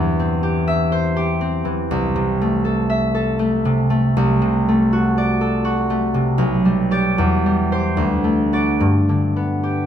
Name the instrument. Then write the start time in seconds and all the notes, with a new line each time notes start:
harp
Already playing: E2 E3 C4 G4 C5 E5
0.19 C4
0.43 G4
0.68 E5
0.92 C5
1.16 G4
1.41 C4
1.65 E3
1.91 C2
2.16 C3
2.41 A3
2.65 A4
2.90 E5
3.15 A4
3.39 A3
3.65 C3
3.90 A3
4.17 C2
4.42 C3
4.68 A3
4.93 F#4
5.18 D5
5.41 A4
5.65 F#4
5.90 A3
6.14 C3
6.38 B1
6.65 G3
6.91 G4 D5
7.18 E2
7.46 G3
7.72 G4 C5
7.97 D2
8.24 A3
8.53 F#4 D5
8.80 G2
9.09 D3
9.36 B3
9.63 G4